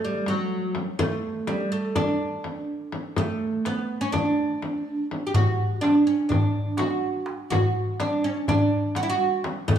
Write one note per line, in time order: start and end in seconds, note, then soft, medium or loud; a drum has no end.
0.04 0.29 G3 medium
0.26 0.78 F#3 medium
0.26 frame drum medium
0.75 frame drum medium
0.99 1.47 A3 medium
0.99 frame drum medium
1.47 1.71 G3 medium
1.47 frame drum medium
1.72 1.97 A3 medium
1.95 2.64 D4 medium
1.95 frame drum medium
2.44 frame drum medium
2.92 frame drum medium
3.16 3.65 A3 medium
3.16 frame drum medium
3.65 4.03 B3 medium
3.65 frame drum medium
4.01 4.12 C#4 medium
4.12 5.05 D4 medium
4.12 frame drum medium
4.62 frame drum medium
5.11 frame drum medium
5.27 5.34 G4 medium
5.34 5.81 F#4 medium
5.34 darbuka dum loud
5.34 frame drum medium
5.81 6.07 D4 medium
5.81 darbuka tek medium
5.81 frame drum medium
5.95 darbuka ka soft
6.07 6.31 C#4 medium
6.29 6.77 D4 medium
6.29 darbuka dum medium
6.29 frame drum medium
6.55 darbuka ka soft
6.77 7.29 F#4 medium
6.77 darbuka tek medium
6.77 frame drum medium
7.03 darbuka ka soft
7.26 darbuka tek medium
7.50 8.00 F#4 medium
7.50 darbuka dum medium
7.50 frame drum medium
8.00 8.22 D4 medium
8.00 darbuka tek medium
8.00 frame drum medium
8.11 darbuka ka soft
8.24 8.49 C#4 medium
8.48 8.96 D4 medium
8.48 darbuka dum medium
8.48 frame drum medium
8.73 darbuka ka soft
8.95 9.02 F#4 medium
8.95 darbuka tek medium
8.95 frame drum medium
9.03 9.09 E4 medium
9.10 9.47 F#4 medium
9.21 darbuka ka soft
9.44 darbuka tek medium
9.44 frame drum medium
9.68 9.75 A3 medium
9.68 frame drum medium
9.68 darbuka dum medium